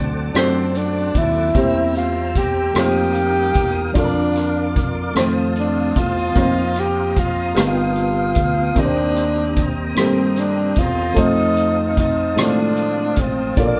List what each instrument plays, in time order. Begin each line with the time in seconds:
Already playing: fingered electric bass D2, upright piano D3 C4 D4 F#4 A4 D5, string section D3 F#3 C4 A4, tonewheel organ C5 F#5 A5 D6
0.33 fingered electric bass F#2, upright piano C4 D4 F4 A4 C5, tenor saxophone C4, cross-stick, closed hi-hat
0.41 upright piano F#4
0.75 tenor saxophone D4, closed hi-hat
1.15 fingered electric bass D#2, tenor saxophone E4, kick, closed hi-hat
1.53 fingered electric bass E2, string section C3, upright piano G3 A#3 C4 G4 E5, tonewheel organ G5 A#5 E6, kick, closed hi-hat
1.58 string section G3 A#3, upright piano C5
1.95 tenor saxophone F4, cross-stick, closed hi-hat
2.36 tenor saxophone G4, kick, closed hi-hat
2.74 fingered electric bass F2, upright piano A3 D#4 F4 G4, string section D#4 F4, tonewheel organ A#4 F5 D#6, cross-stick, closed hi-hat
2.78 upright piano A#3 C5, tenor saxophone G4
3.15 closed hi-hat
3.54 fingered electric bass E2, kick, closed hi-hat
3.94 fingered electric bass F2, string section D3 D4, upright piano D4 F4 A4, tonewheel organ A#4 D5 D6, kick, closed hi-hat
3.99 tenor saxophone D4
4.04 upright piano A#4
4.35 cross-stick, closed hi-hat
4.76 kick, closed hi-hat
5.15 fingered electric bass F2, string section C3 A3 C4, upright piano D#3 A3 C4 F4 C5, tenor saxophone C4, tonewheel organ C5 A5 D#6, cross-stick, closed hi-hat
5.56 tenor saxophone D4, closed hi-hat
5.96 fingered electric bass E2, tenor saxophone F4, kick, closed hi-hat
6.34 fingered electric bass F2, upright piano A#3 C4 D#4 F4 C5, string section A#3, tonewheel organ A#5 D#6, kick, closed hi-hat
6.76 tenor saxophone G4, cross-stick, closed hi-hat
7.16 tenor saxophone F4, kick, closed hi-hat
7.55 fingered electric bass G1, upright piano G2 G3 B3 D#4 F4, string section G3 B3, tonewheel organ B3 G5 D#6, cross-stick, closed hi-hat
7.59 tenor saxophone F4, upright piano A#4
7.96 closed hi-hat
8.35 fingered electric bass D2, kick, closed hi-hat
8.74 fingered electric bass D#2, upright piano D#3 A#3 C4 G4 A#4, string section A#3 C4, tonewheel organ C5 A#5 D#6, kick, closed hi-hat
8.80 tenor saxophone D4
8.85 upright piano C5
9.16 closed hi-hat
9.56 kick, closed hi-hat
9.95 fingered electric bass G2, upright piano D#3 A#3 C4 G4 A4, tenor saxophone C4, cross-stick, closed hi-hat
10.05 upright piano A#4
10.36 tenor saxophone D4, cross-stick, closed hi-hat
10.76 fingered electric bass E2, tenor saxophone F4, kick, closed hi-hat
11.14 fingered electric bass F2, string section F3, upright piano A3 C4 D#4 F4 C5, tenor saxophone D#4, tonewheel organ F5 A5, kick, closed hi-hat
11.57 closed hi-hat
11.97 tenor saxophone D#4, kick, closed hi-hat
12.36 fingered electric bass A2, upright piano D#3 G#3 C4 F4 C5, cross-stick, closed hi-hat
12.40 upright piano A3, tenor saxophone D4
12.76 closed hi-hat
13.16 fingered electric bass A1, tenor saxophone C4, kick, closed hi-hat
13.56 fingered electric bass A#1, upright piano A#2 A#3 D4 F4 A4 C#5, string section D3 A#3, tonewheel organ A#3 D6, tenor saxophone A#3, kick, closed hi-hat
13.67 upright piano D5